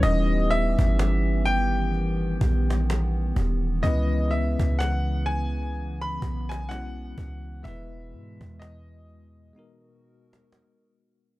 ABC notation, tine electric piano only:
X:1
M:4/4
L:1/8
Q:"Swing 16ths" 1/4=63
K:D#phr
V:1 name="Tine electric piano"
[=G,CDEB]6- [G,CDEB] z | [G,B,CEB]6 [G,B,CEF]2 | [G,B,EB]4 [G,B,DFA]4 |]